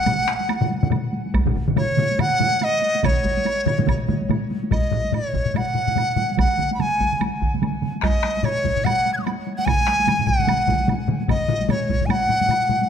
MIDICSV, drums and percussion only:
0, 0, Header, 1, 3, 480
1, 0, Start_track
1, 0, Tempo, 425230
1, 1514, Time_signature, 4, 2, 24, 8
1, 3428, Tempo, 418410
1, 7268, Tempo, 410678
1, 11588, Tempo, 403497
1, 14933, End_track
2, 0, Start_track
2, 0, Title_t, "Taiko and cinematic ensemble drums"
2, 70, Note_on_c, 9, 45, 103
2, 72, Note_on_c, 9, 48, 73
2, 76, Note_on_c, 9, 47, 94
2, 183, Note_off_c, 9, 45, 0
2, 185, Note_off_c, 9, 48, 0
2, 188, Note_off_c, 9, 47, 0
2, 312, Note_on_c, 9, 48, 55
2, 314, Note_on_c, 9, 37, 71
2, 425, Note_off_c, 9, 48, 0
2, 427, Note_off_c, 9, 37, 0
2, 455, Note_on_c, 9, 48, 48
2, 552, Note_off_c, 9, 48, 0
2, 552, Note_on_c, 9, 48, 72
2, 665, Note_off_c, 9, 48, 0
2, 695, Note_on_c, 9, 45, 102
2, 696, Note_on_c, 9, 47, 95
2, 792, Note_on_c, 9, 48, 58
2, 808, Note_off_c, 9, 45, 0
2, 808, Note_off_c, 9, 47, 0
2, 905, Note_off_c, 9, 48, 0
2, 933, Note_on_c, 9, 48, 54
2, 936, Note_on_c, 9, 47, 110
2, 937, Note_on_c, 9, 45, 98
2, 1028, Note_off_c, 9, 45, 0
2, 1028, Note_on_c, 9, 45, 105
2, 1031, Note_off_c, 9, 48, 0
2, 1031, Note_on_c, 9, 48, 60
2, 1032, Note_off_c, 9, 47, 0
2, 1032, Note_on_c, 9, 47, 95
2, 1141, Note_off_c, 9, 45, 0
2, 1144, Note_off_c, 9, 48, 0
2, 1145, Note_off_c, 9, 47, 0
2, 1274, Note_on_c, 9, 48, 49
2, 1387, Note_off_c, 9, 48, 0
2, 1421, Note_on_c, 9, 48, 49
2, 1513, Note_on_c, 9, 41, 104
2, 1519, Note_off_c, 9, 48, 0
2, 1519, Note_on_c, 9, 48, 66
2, 1626, Note_off_c, 9, 41, 0
2, 1632, Note_off_c, 9, 48, 0
2, 1655, Note_on_c, 9, 45, 102
2, 1659, Note_on_c, 9, 47, 102
2, 1756, Note_on_c, 9, 48, 49
2, 1758, Note_on_c, 9, 41, 76
2, 1768, Note_off_c, 9, 45, 0
2, 1771, Note_off_c, 9, 47, 0
2, 1869, Note_off_c, 9, 48, 0
2, 1870, Note_off_c, 9, 41, 0
2, 1892, Note_on_c, 9, 45, 94
2, 1894, Note_on_c, 9, 47, 86
2, 1896, Note_on_c, 9, 48, 47
2, 1987, Note_off_c, 9, 47, 0
2, 1987, Note_on_c, 9, 47, 102
2, 1992, Note_off_c, 9, 45, 0
2, 1992, Note_on_c, 9, 45, 103
2, 1994, Note_off_c, 9, 48, 0
2, 1994, Note_on_c, 9, 48, 63
2, 2100, Note_off_c, 9, 47, 0
2, 2105, Note_off_c, 9, 45, 0
2, 2107, Note_off_c, 9, 48, 0
2, 2232, Note_on_c, 9, 45, 96
2, 2232, Note_on_c, 9, 48, 51
2, 2234, Note_on_c, 9, 47, 88
2, 2345, Note_off_c, 9, 45, 0
2, 2345, Note_off_c, 9, 48, 0
2, 2347, Note_off_c, 9, 47, 0
2, 2379, Note_on_c, 9, 48, 50
2, 2468, Note_off_c, 9, 48, 0
2, 2468, Note_on_c, 9, 48, 66
2, 2471, Note_on_c, 9, 45, 93
2, 2471, Note_on_c, 9, 47, 95
2, 2581, Note_off_c, 9, 48, 0
2, 2584, Note_off_c, 9, 45, 0
2, 2584, Note_off_c, 9, 47, 0
2, 2703, Note_on_c, 9, 47, 96
2, 2708, Note_on_c, 9, 45, 96
2, 2708, Note_on_c, 9, 48, 58
2, 2816, Note_off_c, 9, 47, 0
2, 2821, Note_off_c, 9, 45, 0
2, 2821, Note_off_c, 9, 48, 0
2, 2852, Note_on_c, 9, 48, 52
2, 2948, Note_off_c, 9, 48, 0
2, 2948, Note_on_c, 9, 48, 64
2, 3061, Note_off_c, 9, 48, 0
2, 3185, Note_on_c, 9, 48, 48
2, 3298, Note_off_c, 9, 48, 0
2, 3328, Note_on_c, 9, 48, 54
2, 3423, Note_off_c, 9, 48, 0
2, 3423, Note_on_c, 9, 48, 70
2, 3424, Note_on_c, 9, 45, 99
2, 3427, Note_on_c, 9, 41, 94
2, 3428, Note_on_c, 9, 47, 96
2, 3538, Note_off_c, 9, 45, 0
2, 3538, Note_off_c, 9, 48, 0
2, 3542, Note_off_c, 9, 41, 0
2, 3542, Note_off_c, 9, 47, 0
2, 3667, Note_on_c, 9, 41, 74
2, 3669, Note_on_c, 9, 48, 53
2, 3782, Note_off_c, 9, 41, 0
2, 3784, Note_off_c, 9, 48, 0
2, 3815, Note_on_c, 9, 48, 58
2, 3906, Note_off_c, 9, 48, 0
2, 3906, Note_on_c, 9, 48, 69
2, 4020, Note_off_c, 9, 48, 0
2, 4144, Note_on_c, 9, 45, 100
2, 4148, Note_on_c, 9, 48, 50
2, 4153, Note_on_c, 9, 47, 91
2, 4258, Note_off_c, 9, 45, 0
2, 4263, Note_off_c, 9, 48, 0
2, 4267, Note_off_c, 9, 47, 0
2, 4286, Note_on_c, 9, 45, 101
2, 4290, Note_on_c, 9, 48, 46
2, 4294, Note_on_c, 9, 47, 98
2, 4386, Note_off_c, 9, 47, 0
2, 4386, Note_on_c, 9, 47, 91
2, 4388, Note_off_c, 9, 48, 0
2, 4388, Note_on_c, 9, 48, 76
2, 4390, Note_off_c, 9, 45, 0
2, 4390, Note_on_c, 9, 45, 89
2, 4391, Note_on_c, 9, 41, 75
2, 4501, Note_off_c, 9, 47, 0
2, 4503, Note_off_c, 9, 48, 0
2, 4504, Note_off_c, 9, 45, 0
2, 4506, Note_off_c, 9, 41, 0
2, 4626, Note_on_c, 9, 47, 95
2, 4629, Note_on_c, 9, 45, 89
2, 4633, Note_on_c, 9, 48, 63
2, 4741, Note_off_c, 9, 47, 0
2, 4744, Note_off_c, 9, 45, 0
2, 4748, Note_off_c, 9, 48, 0
2, 4778, Note_on_c, 9, 48, 51
2, 4868, Note_on_c, 9, 45, 93
2, 4870, Note_on_c, 9, 47, 88
2, 4871, Note_off_c, 9, 48, 0
2, 4871, Note_on_c, 9, 48, 77
2, 4982, Note_off_c, 9, 45, 0
2, 4984, Note_off_c, 9, 47, 0
2, 4986, Note_off_c, 9, 48, 0
2, 5118, Note_on_c, 9, 48, 58
2, 5232, Note_off_c, 9, 48, 0
2, 5255, Note_on_c, 9, 48, 58
2, 5344, Note_on_c, 9, 45, 79
2, 5349, Note_on_c, 9, 41, 92
2, 5355, Note_off_c, 9, 48, 0
2, 5355, Note_on_c, 9, 48, 54
2, 5458, Note_off_c, 9, 45, 0
2, 5464, Note_off_c, 9, 41, 0
2, 5470, Note_off_c, 9, 48, 0
2, 5581, Note_on_c, 9, 45, 89
2, 5595, Note_on_c, 9, 48, 40
2, 5696, Note_off_c, 9, 45, 0
2, 5710, Note_off_c, 9, 48, 0
2, 5733, Note_on_c, 9, 48, 37
2, 5820, Note_on_c, 9, 45, 86
2, 5823, Note_off_c, 9, 48, 0
2, 5823, Note_on_c, 9, 48, 56
2, 5935, Note_off_c, 9, 45, 0
2, 5938, Note_off_c, 9, 48, 0
2, 6060, Note_on_c, 9, 45, 62
2, 6067, Note_on_c, 9, 48, 42
2, 6075, Note_on_c, 9, 41, 63
2, 6175, Note_off_c, 9, 45, 0
2, 6182, Note_off_c, 9, 48, 0
2, 6189, Note_off_c, 9, 41, 0
2, 6204, Note_on_c, 9, 45, 65
2, 6299, Note_off_c, 9, 45, 0
2, 6299, Note_on_c, 9, 45, 87
2, 6310, Note_on_c, 9, 48, 59
2, 6414, Note_off_c, 9, 45, 0
2, 6424, Note_off_c, 9, 48, 0
2, 6541, Note_on_c, 9, 45, 65
2, 6549, Note_on_c, 9, 48, 47
2, 6655, Note_off_c, 9, 45, 0
2, 6664, Note_off_c, 9, 48, 0
2, 6684, Note_on_c, 9, 45, 68
2, 6691, Note_on_c, 9, 48, 47
2, 6776, Note_off_c, 9, 45, 0
2, 6776, Note_on_c, 9, 45, 82
2, 6785, Note_off_c, 9, 48, 0
2, 6785, Note_on_c, 9, 48, 60
2, 6891, Note_off_c, 9, 45, 0
2, 6900, Note_off_c, 9, 48, 0
2, 7014, Note_on_c, 9, 45, 82
2, 7026, Note_on_c, 9, 48, 48
2, 7129, Note_off_c, 9, 45, 0
2, 7140, Note_off_c, 9, 48, 0
2, 7170, Note_on_c, 9, 48, 45
2, 7262, Note_on_c, 9, 47, 93
2, 7265, Note_on_c, 9, 41, 94
2, 7271, Note_off_c, 9, 48, 0
2, 7271, Note_on_c, 9, 48, 62
2, 7379, Note_off_c, 9, 47, 0
2, 7382, Note_off_c, 9, 41, 0
2, 7388, Note_off_c, 9, 48, 0
2, 7500, Note_on_c, 9, 47, 86
2, 7509, Note_on_c, 9, 48, 51
2, 7617, Note_off_c, 9, 47, 0
2, 7625, Note_off_c, 9, 48, 0
2, 7651, Note_on_c, 9, 48, 49
2, 7748, Note_on_c, 9, 47, 82
2, 7751, Note_off_c, 9, 48, 0
2, 7751, Note_on_c, 9, 48, 62
2, 7865, Note_off_c, 9, 47, 0
2, 7867, Note_off_c, 9, 48, 0
2, 7987, Note_on_c, 9, 47, 54
2, 7991, Note_on_c, 9, 41, 64
2, 7993, Note_on_c, 9, 48, 46
2, 8104, Note_off_c, 9, 47, 0
2, 8107, Note_off_c, 9, 41, 0
2, 8109, Note_off_c, 9, 48, 0
2, 8136, Note_on_c, 9, 47, 67
2, 8228, Note_off_c, 9, 47, 0
2, 8228, Note_on_c, 9, 47, 84
2, 8237, Note_on_c, 9, 48, 58
2, 8345, Note_off_c, 9, 47, 0
2, 8354, Note_off_c, 9, 48, 0
2, 8473, Note_on_c, 9, 41, 59
2, 8474, Note_on_c, 9, 47, 60
2, 8590, Note_off_c, 9, 41, 0
2, 8591, Note_off_c, 9, 47, 0
2, 8618, Note_on_c, 9, 47, 70
2, 8623, Note_on_c, 9, 48, 48
2, 8711, Note_off_c, 9, 47, 0
2, 8711, Note_on_c, 9, 47, 86
2, 8720, Note_off_c, 9, 48, 0
2, 8720, Note_on_c, 9, 48, 60
2, 8828, Note_off_c, 9, 47, 0
2, 8837, Note_off_c, 9, 48, 0
2, 8949, Note_on_c, 9, 47, 79
2, 8963, Note_on_c, 9, 48, 38
2, 9065, Note_off_c, 9, 47, 0
2, 9079, Note_off_c, 9, 48, 0
2, 9108, Note_on_c, 9, 48, 40
2, 9183, Note_on_c, 9, 37, 65
2, 9196, Note_on_c, 9, 41, 85
2, 9212, Note_off_c, 9, 48, 0
2, 9212, Note_on_c, 9, 48, 57
2, 9300, Note_off_c, 9, 37, 0
2, 9313, Note_off_c, 9, 41, 0
2, 9329, Note_off_c, 9, 48, 0
2, 9424, Note_on_c, 9, 37, 69
2, 9444, Note_on_c, 9, 48, 45
2, 9540, Note_off_c, 9, 37, 0
2, 9560, Note_off_c, 9, 48, 0
2, 9589, Note_on_c, 9, 48, 45
2, 9662, Note_on_c, 9, 45, 92
2, 9685, Note_off_c, 9, 48, 0
2, 9685, Note_on_c, 9, 48, 60
2, 9779, Note_off_c, 9, 45, 0
2, 9802, Note_off_c, 9, 48, 0
2, 9906, Note_on_c, 9, 45, 62
2, 9915, Note_on_c, 9, 41, 69
2, 9918, Note_on_c, 9, 48, 49
2, 10023, Note_off_c, 9, 45, 0
2, 10032, Note_off_c, 9, 41, 0
2, 10035, Note_off_c, 9, 48, 0
2, 10053, Note_on_c, 9, 45, 64
2, 10146, Note_off_c, 9, 45, 0
2, 10146, Note_on_c, 9, 45, 90
2, 10162, Note_on_c, 9, 48, 60
2, 10263, Note_off_c, 9, 45, 0
2, 10279, Note_off_c, 9, 48, 0
2, 10396, Note_on_c, 9, 48, 52
2, 10513, Note_off_c, 9, 48, 0
2, 10540, Note_on_c, 9, 48, 52
2, 10634, Note_off_c, 9, 48, 0
2, 10634, Note_on_c, 9, 48, 66
2, 10751, Note_off_c, 9, 48, 0
2, 10871, Note_on_c, 9, 48, 49
2, 10987, Note_off_c, 9, 48, 0
2, 11010, Note_on_c, 9, 48, 53
2, 11099, Note_on_c, 9, 45, 85
2, 11111, Note_on_c, 9, 41, 87
2, 11115, Note_off_c, 9, 48, 0
2, 11115, Note_on_c, 9, 47, 90
2, 11115, Note_on_c, 9, 48, 72
2, 11216, Note_off_c, 9, 45, 0
2, 11228, Note_off_c, 9, 41, 0
2, 11231, Note_off_c, 9, 47, 0
2, 11232, Note_off_c, 9, 48, 0
2, 11340, Note_on_c, 9, 37, 65
2, 11346, Note_off_c, 9, 37, 0
2, 11346, Note_on_c, 9, 37, 66
2, 11352, Note_on_c, 9, 48, 50
2, 11463, Note_off_c, 9, 37, 0
2, 11469, Note_off_c, 9, 48, 0
2, 11488, Note_on_c, 9, 48, 54
2, 11575, Note_on_c, 9, 45, 66
2, 11583, Note_off_c, 9, 48, 0
2, 11583, Note_on_c, 9, 48, 75
2, 11584, Note_on_c, 9, 47, 63
2, 11694, Note_off_c, 9, 45, 0
2, 11702, Note_off_c, 9, 48, 0
2, 11703, Note_off_c, 9, 47, 0
2, 11716, Note_on_c, 9, 45, 72
2, 11730, Note_on_c, 9, 47, 61
2, 11810, Note_off_c, 9, 45, 0
2, 11810, Note_on_c, 9, 45, 70
2, 11827, Note_on_c, 9, 41, 68
2, 11827, Note_on_c, 9, 48, 46
2, 11828, Note_off_c, 9, 47, 0
2, 11828, Note_on_c, 9, 47, 65
2, 11929, Note_off_c, 9, 45, 0
2, 11946, Note_off_c, 9, 41, 0
2, 11946, Note_off_c, 9, 48, 0
2, 11947, Note_off_c, 9, 47, 0
2, 11958, Note_on_c, 9, 45, 65
2, 11968, Note_on_c, 9, 47, 70
2, 11969, Note_on_c, 9, 48, 42
2, 12055, Note_off_c, 9, 45, 0
2, 12055, Note_off_c, 9, 48, 0
2, 12055, Note_on_c, 9, 45, 80
2, 12055, Note_on_c, 9, 48, 72
2, 12061, Note_off_c, 9, 47, 0
2, 12061, Note_on_c, 9, 47, 89
2, 12174, Note_off_c, 9, 45, 0
2, 12174, Note_off_c, 9, 48, 0
2, 12180, Note_off_c, 9, 47, 0
2, 12295, Note_on_c, 9, 45, 92
2, 12300, Note_on_c, 9, 48, 58
2, 12302, Note_on_c, 9, 47, 85
2, 12310, Note_on_c, 9, 41, 66
2, 12414, Note_off_c, 9, 45, 0
2, 12419, Note_off_c, 9, 48, 0
2, 12421, Note_off_c, 9, 47, 0
2, 12429, Note_off_c, 9, 41, 0
2, 12443, Note_on_c, 9, 48, 57
2, 12536, Note_off_c, 9, 48, 0
2, 12536, Note_on_c, 9, 48, 72
2, 12539, Note_on_c, 9, 47, 101
2, 12540, Note_on_c, 9, 45, 91
2, 12655, Note_off_c, 9, 48, 0
2, 12658, Note_off_c, 9, 47, 0
2, 12659, Note_off_c, 9, 45, 0
2, 12778, Note_on_c, 9, 45, 90
2, 12781, Note_on_c, 9, 48, 56
2, 12782, Note_on_c, 9, 47, 87
2, 12897, Note_off_c, 9, 45, 0
2, 12900, Note_off_c, 9, 48, 0
2, 12901, Note_off_c, 9, 47, 0
2, 12927, Note_on_c, 9, 48, 54
2, 13019, Note_on_c, 9, 45, 92
2, 13028, Note_on_c, 9, 41, 90
2, 13029, Note_off_c, 9, 48, 0
2, 13029, Note_on_c, 9, 48, 71
2, 13138, Note_off_c, 9, 45, 0
2, 13147, Note_off_c, 9, 41, 0
2, 13148, Note_off_c, 9, 48, 0
2, 13258, Note_on_c, 9, 45, 94
2, 13269, Note_on_c, 9, 48, 52
2, 13377, Note_off_c, 9, 45, 0
2, 13388, Note_off_c, 9, 48, 0
2, 13404, Note_on_c, 9, 48, 55
2, 13498, Note_on_c, 9, 45, 105
2, 13501, Note_off_c, 9, 48, 0
2, 13501, Note_on_c, 9, 48, 75
2, 13617, Note_off_c, 9, 45, 0
2, 13620, Note_off_c, 9, 48, 0
2, 13743, Note_on_c, 9, 45, 62
2, 13745, Note_on_c, 9, 48, 56
2, 13753, Note_on_c, 9, 41, 68
2, 13862, Note_off_c, 9, 45, 0
2, 13864, Note_off_c, 9, 48, 0
2, 13872, Note_off_c, 9, 41, 0
2, 13886, Note_on_c, 9, 45, 74
2, 13978, Note_off_c, 9, 45, 0
2, 13978, Note_on_c, 9, 45, 87
2, 13986, Note_on_c, 9, 48, 71
2, 14097, Note_off_c, 9, 45, 0
2, 14105, Note_off_c, 9, 48, 0
2, 14215, Note_on_c, 9, 45, 64
2, 14224, Note_on_c, 9, 48, 59
2, 14334, Note_off_c, 9, 45, 0
2, 14343, Note_off_c, 9, 48, 0
2, 14358, Note_on_c, 9, 45, 65
2, 14364, Note_on_c, 9, 48, 58
2, 14451, Note_off_c, 9, 45, 0
2, 14451, Note_on_c, 9, 45, 98
2, 14460, Note_off_c, 9, 48, 0
2, 14460, Note_on_c, 9, 48, 70
2, 14570, Note_off_c, 9, 45, 0
2, 14578, Note_off_c, 9, 48, 0
2, 14694, Note_on_c, 9, 45, 79
2, 14698, Note_on_c, 9, 48, 56
2, 14813, Note_off_c, 9, 45, 0
2, 14817, Note_off_c, 9, 48, 0
2, 14839, Note_on_c, 9, 48, 59
2, 14933, Note_off_c, 9, 48, 0
2, 14933, End_track
3, 0, Start_track
3, 0, Title_t, "Drums"
3, 71, Note_on_c, 9, 76, 40
3, 184, Note_off_c, 9, 76, 0
3, 557, Note_on_c, 9, 76, 57
3, 670, Note_off_c, 9, 76, 0
3, 1037, Note_on_c, 9, 76, 39
3, 1150, Note_off_c, 9, 76, 0
3, 1518, Note_on_c, 9, 76, 47
3, 1631, Note_off_c, 9, 76, 0
3, 2000, Note_on_c, 9, 76, 44
3, 2113, Note_off_c, 9, 76, 0
3, 2474, Note_on_c, 9, 76, 53
3, 2587, Note_off_c, 9, 76, 0
3, 2953, Note_on_c, 9, 76, 39
3, 3066, Note_off_c, 9, 76, 0
3, 3438, Note_on_c, 9, 76, 54
3, 3553, Note_off_c, 9, 76, 0
3, 3915, Note_on_c, 9, 76, 41
3, 4029, Note_off_c, 9, 76, 0
3, 4160, Note_on_c, 9, 76, 35
3, 4275, Note_off_c, 9, 76, 0
3, 4403, Note_on_c, 9, 76, 52
3, 4518, Note_off_c, 9, 76, 0
3, 4883, Note_on_c, 9, 76, 39
3, 4998, Note_off_c, 9, 76, 0
3, 5360, Note_on_c, 9, 76, 42
3, 5475, Note_off_c, 9, 76, 0
3, 5842, Note_on_c, 9, 76, 35
3, 5957, Note_off_c, 9, 76, 0
3, 6323, Note_on_c, 9, 76, 41
3, 6438, Note_off_c, 9, 76, 0
3, 6802, Note_on_c, 9, 76, 34
3, 6917, Note_off_c, 9, 76, 0
3, 7271, Note_on_c, 9, 76, 48
3, 7388, Note_off_c, 9, 76, 0
3, 7753, Note_on_c, 9, 76, 39
3, 7870, Note_off_c, 9, 76, 0
3, 8234, Note_on_c, 9, 76, 45
3, 8351, Note_off_c, 9, 76, 0
3, 8721, Note_on_c, 9, 76, 38
3, 8838, Note_off_c, 9, 76, 0
3, 9201, Note_on_c, 9, 76, 46
3, 9317, Note_off_c, 9, 76, 0
3, 9684, Note_on_c, 9, 76, 40
3, 9801, Note_off_c, 9, 76, 0
3, 10166, Note_on_c, 9, 76, 50
3, 10283, Note_off_c, 9, 76, 0
3, 10639, Note_on_c, 9, 76, 43
3, 10756, Note_off_c, 9, 76, 0
3, 11115, Note_on_c, 9, 76, 55
3, 11232, Note_off_c, 9, 76, 0
3, 11589, Note_on_c, 9, 76, 41
3, 11708, Note_off_c, 9, 76, 0
3, 12071, Note_on_c, 9, 76, 52
3, 12190, Note_off_c, 9, 76, 0
3, 12555, Note_on_c, 9, 76, 38
3, 12674, Note_off_c, 9, 76, 0
3, 13031, Note_on_c, 9, 76, 44
3, 13150, Note_off_c, 9, 76, 0
3, 13515, Note_on_c, 9, 76, 41
3, 13634, Note_off_c, 9, 76, 0
3, 13992, Note_on_c, 9, 76, 51
3, 14111, Note_off_c, 9, 76, 0
3, 14475, Note_on_c, 9, 76, 39
3, 14594, Note_off_c, 9, 76, 0
3, 14933, End_track
0, 0, End_of_file